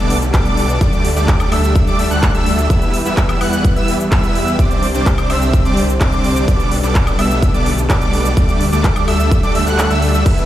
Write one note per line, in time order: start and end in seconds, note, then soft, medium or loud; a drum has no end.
0.00 0.31 B1 loud
0.00 0.77 D3 medium
0.00 0.16 G3 loud
0.00 2.66 A3 medium
0.00 0.16 B3 medium
0.00 0.79 B3 medium
0.00 0.16 D4 medium
0.00 8.33 G4 medium
0.00 0.16 A4 medium
0.00 0.16 D5 loud
0.00 0.16 D6 loud
0.10 open hi-hat loud
0.22 closed hi-hat soft
0.22 shaker medium
0.34 0.79 B1 loud
0.34 0.78 G3 medium
0.34 0.78 B3 medium
0.34 0.78 D4 medium
0.34 0.78 A4 medium
0.34 0.78 D5 loud
0.34 0.78 D6 loud
0.34 kick loud
0.34 clap loud
0.34 closed hi-hat medium
0.34 shaker medium
0.46 closed hi-hat soft
0.46 shaker soft
0.57 open hi-hat loud
0.69 closed hi-hat soft
0.69 shaker medium
0.81 1.14 D2 loud
0.81 2.68 D3 medium
0.81 1.09 G3 medium
0.81 6.44 G3 medium
0.81 1.09 A3 medium
0.81 1.09 D4 medium
0.81 1.09 A4 medium
0.81 1.09 D5 loud
0.81 1.09 D6 medium
0.81 kick loud
0.81 closed hi-hat medium
0.81 shaker medium
0.93 closed hi-hat soft
0.93 shaker soft
1.05 open hi-hat loud
1.16 1.50 D2 medium
1.16 1.49 G3 medium
1.16 1.49 A3 medium
1.16 1.49 D4 medium
1.16 1.49 A4 medium
1.16 1.49 D5 medium
1.16 1.49 D6 medium
1.16 closed hi-hat soft
1.16 shaker medium
1.28 kick loud
1.28 clap loud
1.28 closed hi-hat medium
1.28 shaker medium
1.40 closed hi-hat soft
1.40 high woodblock medium
1.40 shaker soft
1.52 1.85 D2 medium
1.52 1.85 G3 medium
1.52 1.85 A3 medium
1.52 1.85 D4 medium
1.52 1.85 A4 medium
1.52 1.85 E5 medium
1.52 1.85 E6 medium
1.52 open hi-hat medium
1.52 high woodblock medium
1.64 closed hi-hat soft
1.64 shaker medium
1.75 kick loud
1.75 closed hi-hat medium
1.75 shaker medium
1.87 1.97 D2 loud
1.87 1.97 G3 medium
1.87 1.97 A3 medium
1.87 1.97 D4 medium
1.87 1.97 A4 medium
1.87 1.97 D5 loud
1.87 1.97 D6 loud
1.87 closed hi-hat soft
1.87 shaker soft
1.99 2.09 D2 medium
1.99 2.08 G3 medium
1.99 2.08 A3 medium
1.99 2.08 D4 medium
1.99 2.08 A4 medium
1.99 2.08 E5 medium
1.99 2.08 E6 loud
1.99 open hi-hat loud
2.11 2.32 D2 loud
2.11 2.32 G3 loud
2.11 2.32 A3 medium
2.11 2.32 D4 medium
2.11 2.32 A4 medium
2.11 2.32 F#5 loud
2.11 2.32 F#6 loud
2.11 closed hi-hat soft
2.11 shaker medium
2.23 kick loud
2.23 clap loud
2.23 closed hi-hat medium
2.23 shaker medium
2.35 2.68 D2 loud
2.35 2.67 G3 loud
2.35 2.67 A3 medium
2.35 2.67 D4 medium
2.35 2.67 A4 medium
2.35 2.67 E5 loud
2.35 2.67 E6 loud
2.35 closed hi-hat soft
2.35 shaker soft
2.46 open hi-hat loud
2.58 closed hi-hat soft
2.58 shaker medium
2.70 3.03 E2 loud
2.70 4.57 E3 medium
2.70 2.98 G3 medium
2.70 2.98 B3 medium
2.70 4.57 B3 medium
2.70 2.98 E4 medium
2.70 2.98 B4 medium
2.70 2.98 E5 medium
2.70 2.98 E6 medium
2.70 kick loud
2.70 closed hi-hat medium
2.70 shaker medium
2.82 closed hi-hat soft
2.82 shaker soft
2.94 open hi-hat loud
3.05 3.39 E2 loud
3.05 3.38 G3 medium
3.05 3.38 B3 medium
3.05 3.38 E4 medium
3.05 3.38 B4 medium
3.05 3.38 E5 medium
3.05 3.38 E6 medium
3.05 closed hi-hat soft
3.05 shaker medium
3.17 kick loud
3.17 clap loud
3.17 closed hi-hat medium
3.17 shaker medium
3.29 closed hi-hat soft
3.29 high woodblock medium
3.29 shaker soft
3.41 3.74 E2 medium
3.41 3.74 G3 medium
3.41 3.74 B3 medium
3.41 3.74 E4 medium
3.41 3.74 B4 medium
3.41 3.74 F#5 medium
3.41 3.73 F#6 medium
3.41 open hi-hat medium
3.41 high woodblock medium
3.53 closed hi-hat soft
3.53 shaker medium
3.65 kick loud
3.65 closed hi-hat medium
3.65 shaker medium
3.76 4.09 E2 medium
3.76 3.94 G3 medium
3.76 3.94 B3 medium
3.76 3.94 E4 medium
3.76 3.94 B4 medium
3.76 3.94 E5 loud
3.76 3.94 E6 loud
3.76 closed hi-hat soft
3.76 shaker soft
3.88 open hi-hat loud
4.00 closed hi-hat soft
4.00 shaker medium
4.12 4.57 E2 loud
4.12 4.56 G3 medium
4.12 4.56 B3 medium
4.12 4.56 E4 medium
4.12 4.56 B4 medium
4.12 4.56 E5 loud
4.12 4.56 E6 loud
4.12 kick loud
4.12 clap loud
4.12 closed hi-hat medium
4.12 shaker medium
4.24 closed hi-hat soft
4.24 shaker soft
4.35 open hi-hat medium
4.47 closed hi-hat soft
4.47 shaker medium
4.59 4.92 C2 loud
4.59 10.22 D3 medium
4.59 4.87 G3 medium
4.59 4.87 C4 medium
4.59 6.46 C4 medium
4.59 4.87 D4 medium
4.59 4.87 C5 medium
4.59 4.87 D5 medium
4.59 4.87 D6 medium
4.59 kick loud
4.59 closed hi-hat medium
4.59 shaker medium
4.71 closed hi-hat soft
4.71 shaker soft
4.83 open hi-hat loud
4.94 5.28 C2 medium
4.94 5.27 G3 medium
4.94 5.27 C4 medium
4.94 5.27 D4 medium
4.94 5.27 C5 medium
4.94 5.27 D5 medium
4.94 5.27 D6 medium
4.94 closed hi-hat soft
4.94 shaker medium
5.06 kick loud
5.06 clap loud
5.06 closed hi-hat medium
5.06 shaker medium
5.18 closed hi-hat soft
5.18 high woodblock medium
5.18 shaker soft
5.30 5.63 C2 loud
5.30 5.62 G3 medium
5.30 5.62 C4 medium
5.30 5.62 D4 medium
5.30 5.62 C5 medium
5.30 5.62 E5 loud
5.30 5.62 E6 medium
5.30 open hi-hat medium
5.30 high woodblock medium
5.42 closed hi-hat soft
5.42 shaker medium
5.53 kick loud
5.53 closed hi-hat medium
5.53 shaker medium
5.65 5.98 C2 loud
5.65 5.83 G3 loud
5.65 5.83 C4 medium
5.65 5.83 D4 medium
5.65 5.83 C5 medium
5.65 5.83 D5 loud
5.65 5.83 D6 loud
5.65 closed hi-hat soft
5.65 shaker soft
5.77 open hi-hat loud
5.89 closed hi-hat soft
5.89 shaker medium
6.01 6.46 C2 medium
6.01 6.45 G3 medium
6.01 6.45 C4 medium
6.01 6.45 D4 medium
6.01 6.45 C5 medium
6.01 6.45 D5 loud
6.01 6.45 D6 loud
6.01 kick loud
6.01 clap loud
6.01 closed hi-hat medium
6.01 shaker medium
6.13 closed hi-hat soft
6.13 shaker soft
6.24 open hi-hat medium
6.36 closed hi-hat soft
6.36 shaker medium
6.48 6.81 B1 loud
6.48 6.76 G3 medium
6.48 10.22 A3 medium
6.48 6.76 B3 medium
6.48 8.35 B3 medium
6.48 6.76 D4 medium
6.48 6.76 A4 medium
6.48 6.76 D5 medium
6.48 6.76 D6 medium
6.48 kick loud
6.48 closed hi-hat medium
6.48 shaker medium
6.60 closed hi-hat soft
6.60 shaker soft
6.72 open hi-hat loud
6.83 7.17 B1 medium
6.83 7.16 G3 medium
6.83 7.16 B3 medium
6.83 7.16 D4 medium
6.83 7.16 A4 medium
6.83 7.16 D5 medium
6.83 7.16 D6 medium
6.83 closed hi-hat soft
6.83 shaker medium
6.95 kick loud
6.95 clap loud
6.95 closed hi-hat medium
6.95 shaker medium
7.07 closed hi-hat soft
7.07 high woodblock medium
7.07 shaker soft
7.19 7.52 B1 loud
7.19 7.51 G3 medium
7.19 7.51 B3 medium
7.19 7.51 D4 medium
7.19 7.51 A4 medium
7.19 7.51 E5 loud
7.19 7.51 E6 medium
7.19 open hi-hat medium
7.19 high woodblock medium
7.31 closed hi-hat soft
7.31 shaker medium
7.42 kick loud
7.42 closed hi-hat medium
7.42 shaker medium
7.54 7.87 B1 medium
7.54 7.72 G3 medium
7.54 7.72 B3 medium
7.54 7.72 D4 medium
7.54 7.72 A4 medium
7.54 7.72 D5 loud
7.54 7.72 D6 loud
7.54 closed hi-hat soft
7.54 shaker soft
7.66 open hi-hat loud
7.78 closed hi-hat soft
7.78 shaker medium
7.90 8.35 B1 medium
7.90 8.34 G3 loud
7.90 8.34 B3 medium
7.90 8.34 D4 medium
7.90 8.34 A4 medium
7.90 8.34 D5 loud
7.90 8.34 D6 loud
7.90 kick loud
7.90 clap loud
7.90 closed hi-hat medium
7.90 shaker medium
8.02 closed hi-hat soft
8.02 shaker soft
8.13 open hi-hat medium
8.25 closed hi-hat soft
8.25 shaker medium
8.37 8.70 D2 loud
8.37 8.65 G3 medium
8.37 10.46 G3 medium
8.37 8.65 A3 medium
8.37 8.65 D4 medium
8.37 10.46 G4 medium
8.37 8.65 A4 medium
8.37 8.65 D5 medium
8.37 kick loud
8.37 closed hi-hat medium
8.37 shaker medium
8.49 closed hi-hat soft
8.49 shaker soft
8.61 open hi-hat loud
8.72 9.06 D2 loud
8.72 9.05 G3 medium
8.72 9.05 A3 medium
8.72 9.05 D4 medium
8.72 9.05 A4 medium
8.72 9.05 D5 medium
8.72 9.05 D6 medium
8.72 closed hi-hat soft
8.72 shaker medium
8.84 kick loud
8.84 clap loud
8.84 closed hi-hat medium
8.84 shaker medium
8.96 closed hi-hat soft
8.96 high woodblock medium
8.96 shaker soft
9.08 9.41 D2 loud
9.08 9.40 G3 medium
9.08 9.40 A3 medium
9.08 9.40 D4 medium
9.08 9.40 A4 medium
9.08 9.40 E5 loud
9.08 9.40 E6 loud
9.08 open hi-hat medium
9.08 high woodblock medium
9.20 closed hi-hat soft
9.20 shaker medium
9.31 kick loud
9.31 closed hi-hat medium
9.31 shaker medium
9.43 9.53 D2 medium
9.43 9.53 G3 medium
9.43 9.53 A3 medium
9.43 9.53 D4 medium
9.43 9.53 A4 medium
9.43 9.53 D5 loud
9.43 9.53 D6 loud
9.43 closed hi-hat soft
9.43 shaker soft
9.55 9.65 D2 loud
9.55 9.64 G3 medium
9.55 9.64 A3 medium
9.55 9.64 D4 medium
9.55 9.64 A4 medium
9.55 9.64 E5 loud
9.55 9.64 E6 loud
9.55 open hi-hat loud
9.67 9.88 D2 loud
9.67 9.88 G3 loud
9.67 9.88 A3 medium
9.67 9.88 D4 medium
9.67 9.88 A4 medium
9.67 9.88 F#5 loud
9.67 9.88 F#6 loud
9.67 closed hi-hat soft
9.67 shaker medium
9.79 clap loud
9.79 closed hi-hat medium
9.79 shaker medium
9.90 10.24 D2 loud
9.90 10.23 G3 medium
9.90 10.23 A3 medium
9.90 10.23 D4 medium
9.90 10.23 A4 medium
9.90 10.23 E5 loud
9.90 10.23 E6 loud
9.90 closed hi-hat soft
9.90 shaker soft
10.02 open hi-hat medium
10.14 closed hi-hat soft
10.14 shaker medium
10.26 10.46 E2 loud
10.26 10.46 E3 medium
10.26 10.46 G3 medium
10.26 10.46 B3 medium
10.26 10.46 E4 medium
10.26 10.46 B4 medium
10.26 10.46 E5 loud
10.26 10.46 E6 loud
10.26 kick loud
10.26 closed hi-hat medium
10.26 crash medium
10.26 shaker medium
10.38 closed hi-hat soft
10.38 shaker soft